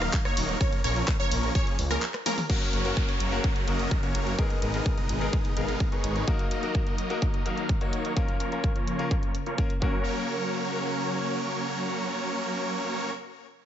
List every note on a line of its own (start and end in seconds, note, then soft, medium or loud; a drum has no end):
0.00 0.22 F#3 medium
0.00 0.22 A#3 medium
0.00 0.22 D#4 medium
0.00 0.22 A#4 medium
0.00 0.22 F5 loud
0.00 cross-stick medium
0.00 closed hi-hat soft
0.13 kick loud
0.13 clap loud
0.13 closed hi-hat medium
0.25 0.58 F#3 medium
0.25 0.58 A#3 medium
0.25 0.58 D#4 medium
0.25 0.58 A#4 medium
0.25 0.58 C#5 loud
0.25 cross-stick medium
0.25 closed hi-hat soft
0.37 0.55 D#1 loud
0.37 open hi-hat loud
0.37 ride medium
0.61 0.80 F3 medium
0.61 0.80 A#3 medium
0.61 0.80 C#4 medium
0.61 0.80 A#4 medium
0.61 0.80 C#5 loud
0.61 0.80 C#5 medium
0.61 kick loud
0.61 closed hi-hat medium
0.73 closed hi-hat soft
0.84 1.03 A#1 loud
0.84 1.17 F3 medium
0.84 1.17 A#3 medium
0.84 1.17 C#4 medium
0.84 1.17 A#4 medium
0.84 1.17 C#5 medium
0.84 open hi-hat loud
0.84 ride medium
0.96 closed hi-hat soft
1.08 kick loud
1.08 cross-stick medium
1.08 clap loud
1.08 closed hi-hat medium
1.20 1.52 F3 medium
1.20 1.52 A#3 medium
1.20 1.52 C#4 medium
1.20 1.52 A#4 medium
1.20 1.52 C#5 loud
1.20 closed hi-hat soft
1.31 1.50 A#1 medium
1.31 open hi-hat loud
1.31 ride medium
1.43 closed hi-hat soft
1.55 1.76 F3 loud
1.55 1.76 A#3 medium
1.55 1.76 C#4 medium
1.55 1.76 G#4 medium
1.55 1.76 C#5 loud
1.55 kick loud
1.55 closed hi-hat medium
1.67 closed hi-hat soft
1.79 1.97 C#2 medium
1.79 open hi-hat loud
1.79 ride medium
1.91 2.03 F3 medium
1.91 2.03 A#3 medium
1.91 2.03 C#4 medium
1.91 2.03 G#4 medium
1.91 2.03 A#4 medium
1.91 cross-stick medium
1.91 closed hi-hat soft
2.02 clap loud
2.02 closed hi-hat medium
2.14 cross-stick medium
2.14 clap soft
2.14 closed hi-hat soft
2.26 2.38 F3 loud
2.26 2.38 A#3 medium
2.26 2.38 C#4 medium
2.26 2.38 G#4 medium
2.26 2.38 A#4 loud
2.26 open hi-hat loud
2.26 high tom medium
2.26 ride medium
2.38 open hi-hat medium
2.38 mid tom medium
2.49 4.37 C#3 medium
2.49 4.37 F#3 medium
2.49 2.69 F#3 medium
2.49 2.82 A#3 medium
2.49 2.69 A#3 medium
2.49 2.82 C#4 medium
2.49 2.69 C#4 medium
2.49 4.37 F#4 medium
2.49 2.82 F#4 medium
2.49 4.37 A#4 medium
2.49 2.69 A#4 medium
2.49 2.82 A#4 medium
2.49 2.69 C#5 medium
2.49 kick loud
2.49 closed hi-hat medium
2.49 crash medium
2.49 downlifter medium
2.61 closed hi-hat soft
2.73 2.92 F#1 loud
2.73 3.06 F#3 medium
2.73 3.06 A#3 medium
2.73 3.06 C#4 medium
2.73 3.06 A#4 medium
2.73 3.06 C#5 medium
2.73 closed hi-hat medium
2.84 3.06 A#3 medium
2.84 3.06 C#4 medium
2.84 3.06 F#4 medium
2.84 3.06 A#4 medium
2.84 closed hi-hat soft
2.97 kick loud
2.97 closed hi-hat medium
3.09 3.41 F#3 medium
3.09 3.41 A#3 medium
3.09 3.41 C#4 medium
3.09 3.41 A#4 medium
3.09 3.41 C#5 loud
3.09 closed hi-hat soft
3.20 3.39 F#1 medium
3.20 closed hi-hat medium
3.32 3.45 A#3 medium
3.32 3.45 C#4 medium
3.32 3.45 F#4 medium
3.32 3.46 A#4 loud
3.32 closed hi-hat soft
3.44 3.65 F#3 medium
3.44 3.65 A#3 medium
3.44 3.65 C#4 medium
3.44 3.65 A#4 medium
3.44 3.65 C#5 loud
3.44 kick loud
3.44 closed hi-hat medium
3.56 closed hi-hat soft
3.67 3.86 F#1 medium
3.67 4.00 F#3 medium
3.67 3.80 A#3 medium
3.67 4.00 A#3 medium
3.67 3.81 C#4 medium
3.67 4.00 C#4 medium
3.67 3.81 F#4 medium
3.67 4.00 A#4 medium
3.67 3.81 A#4 medium
3.67 4.00 D#5 loud
3.67 closed hi-hat medium
3.79 closed hi-hat soft
3.91 kick loud
3.91 closed hi-hat medium
4.03 4.36 F#3 medium
4.03 4.35 A#3 medium
4.03 4.36 A#3 medium
4.03 4.36 C#4 medium
4.03 4.36 F#4 medium
4.03 4.36 A#4 medium
4.03 4.36 C#5 loud
4.03 4.36 C#5 medium
4.03 closed hi-hat soft
4.15 4.33 F#1 loud
4.15 closed hi-hat loud
4.27 closed hi-hat soft
4.38 6.26 B2 medium
4.38 6.26 G#3 medium
4.38 4.58 G#3 medium
4.38 4.71 B3 medium
4.38 4.58 B3 medium
4.38 4.71 D#4 medium
4.38 6.26 D#4 medium
4.38 4.58 D#4 medium
4.38 6.26 G#4 medium
4.38 4.71 G#4 medium
4.38 4.58 A#4 medium
4.38 4.71 A#4 medium
4.38 4.58 D#5 medium
4.38 kick loud
4.38 closed hi-hat medium
4.50 closed hi-hat soft
4.62 4.81 G#1 loud
4.62 4.95 G#3 medium
4.62 4.95 B3 medium
4.62 4.95 D#4 medium
4.62 4.95 A#4 medium
4.62 4.95 D#5 medium
4.62 closed hi-hat medium
4.73 4.95 B3 medium
4.73 4.95 D#4 medium
4.73 4.95 G#4 medium
4.73 4.95 A#4 medium
4.73 closed hi-hat soft
4.86 kick loud
4.86 closed hi-hat medium
4.98 5.30 G#3 medium
4.98 5.30 B3 medium
4.98 5.30 D#4 medium
4.98 5.30 A#4 medium
4.98 5.30 D#5 loud
4.98 closed hi-hat soft
5.09 5.28 G#1 medium
5.09 closed hi-hat medium
5.21 5.34 B3 medium
5.21 5.34 D#4 medium
5.21 5.34 G#4 medium
5.21 5.35 A#4 loud
5.21 closed hi-hat soft
5.33 5.54 G#3 loud
5.33 5.54 B3 medium
5.33 5.54 D#4 medium
5.33 5.54 A#4 medium
5.33 5.54 D#5 loud
5.33 kick loud
5.33 closed hi-hat medium
5.45 closed hi-hat soft
5.56 5.75 G#1 medium
5.56 5.89 G#3 medium
5.56 5.69 B3 medium
5.56 5.89 B3 medium
5.56 5.70 D#4 medium
5.56 5.89 D#4 medium
5.56 5.70 G#4 medium
5.56 5.89 A#4 medium
5.56 5.70 A#4 medium
5.56 5.89 F5 loud
5.56 closed hi-hat medium
5.68 closed hi-hat soft
5.80 kick loud
5.80 closed hi-hat medium
5.91 6.25 G#3 loud
5.91 6.24 B3 medium
5.91 6.25 B3 medium
5.91 6.25 D#4 medium
5.91 6.25 G#4 medium
5.91 6.25 A#4 medium
5.91 6.25 C#5 loud
5.91 closed hi-hat soft
6.04 6.22 G#1 medium
6.04 closed hi-hat medium
6.16 closed hi-hat soft
6.27 8.15 D#3 medium
6.27 8.15 F#3 medium
6.27 6.47 F#3 medium
6.27 6.60 A#3 medium
6.27 8.15 A#3 medium
6.27 6.47 A#3 medium
6.27 6.60 D#4 medium
6.27 6.47 D#4 medium
6.27 8.15 F#4 medium
6.27 6.60 F#4 medium
6.27 9.78 A#4 medium
6.27 6.47 A#4 medium
6.27 6.60 A#4 loud
6.27 6.47 D#5 medium
6.27 kick loud
6.27 closed hi-hat medium
6.39 closed hi-hat soft
6.51 6.84 F#3 medium
6.51 6.84 A#3 medium
6.51 6.84 D#4 medium
6.51 6.84 A#4 medium
6.51 6.84 D#5 medium
6.51 closed hi-hat medium
6.62 6.84 A#3 medium
6.62 6.84 D#4 medium
6.62 6.84 F#4 medium
6.62 6.84 A#4 medium
6.62 closed hi-hat soft
6.75 kick loud
6.75 closed hi-hat medium
6.87 7.19 F#3 medium
6.87 7.19 A#3 medium
6.87 7.19 D#4 medium
6.87 7.19 A#4 medium
6.87 7.19 D#5 loud
6.87 closed hi-hat soft
6.98 closed hi-hat medium
7.10 7.23 A#3 medium
7.10 7.23 D#4 medium
7.10 7.23 F#4 medium
7.10 7.24 A#4 loud
7.10 closed hi-hat soft
7.22 7.43 F#3 medium
7.22 7.43 A#3 medium
7.22 7.43 D#4 medium
7.22 7.43 A#4 medium
7.22 7.43 D#5 loud
7.22 kick loud
7.22 closed hi-hat medium
7.34 closed hi-hat soft
7.45 7.78 F#3 medium
7.45 7.58 A#3 medium
7.45 7.78 A#3 medium
7.45 7.59 D#4 medium
7.45 7.78 D#4 medium
7.45 7.59 F#4 medium
7.45 7.78 A#4 medium
7.45 7.59 A#4 medium
7.45 7.78 F5 loud
7.45 closed hi-hat medium
7.57 closed hi-hat soft
7.69 kick loud
7.69 closed hi-hat medium
7.80 8.14 F#3 medium
7.80 8.13 A#3 medium
7.80 8.14 A#3 medium
7.80 8.14 D#4 medium
7.80 8.14 F#4 medium
7.80 8.14 A#4 medium
7.80 8.14 C#5 loud
7.80 8.14 C#5 medium
7.80 closed hi-hat soft
7.93 closed hi-hat medium
8.05 closed hi-hat soft
8.16 9.80 C#3 medium
8.16 8.36 F3 medium
8.16 9.80 F3 medium
8.16 8.49 A#3 medium
8.16 8.36 A#3 medium
8.16 9.80 A#3 medium
8.16 8.49 C#4 medium
8.16 8.36 C#4 medium
8.16 9.80 F4 medium
8.16 8.49 F4 medium
8.16 8.36 A#4 medium
8.16 8.49 A#4 medium
8.16 8.36 C#5 medium
8.16 kick loud
8.16 closed hi-hat medium
8.28 closed hi-hat soft
8.40 8.73 F3 medium
8.40 8.73 A#3 medium
8.40 8.73 C#4 medium
8.40 8.73 A#4 medium
8.40 8.73 C#5 medium
8.40 closed hi-hat medium
8.51 8.73 A#3 medium
8.51 8.73 C#4 medium
8.51 8.73 F4 medium
8.51 8.73 A#4 medium
8.51 closed hi-hat soft
8.64 kick loud
8.64 closed hi-hat medium
8.76 9.08 F3 medium
8.76 9.08 A#3 medium
8.76 9.08 C#4 medium
8.76 9.08 A#4 medium
8.76 9.08 C#5 loud
8.76 closed hi-hat soft
8.87 closed hi-hat medium
8.99 9.12 A#3 medium
8.99 9.12 C#4 medium
8.99 9.12 F4 medium
8.99 9.13 A#4 loud
8.99 closed hi-hat soft
9.11 9.32 F3 loud
9.11 9.32 A#3 medium
9.11 9.32 C#4 medium
9.11 9.32 A#4 medium
9.11 9.32 C#5 loud
9.11 kick loud
9.11 closed hi-hat medium
9.23 closed hi-hat soft
9.35 closed hi-hat medium
9.46 9.59 F3 medium
9.46 9.59 A#3 medium
9.46 9.59 C#4 medium
9.46 9.59 A#4 medium
9.46 9.59 C#5 medium
9.46 closed hi-hat soft
9.58 9.71 A#3 medium
9.58 9.71 C#4 medium
9.58 9.71 F4 medium
9.58 9.72 A#4 medium
9.58 kick loud
9.58 closed hi-hat medium
9.70 closed hi-hat soft
9.80 13.11 C#3 medium
9.80 13.11 F#3 medium
9.80 13.09 A#3 medium
9.80 13.11 A#3 medium
9.80 13.10 C#4 medium
9.80 13.11 C#4 medium
9.80 13.11 F#4 medium
9.80 13.11 A#4 medium
9.80 13.13 A#4 medium
9.80 13.11 C#5 medium
9.80 kick loud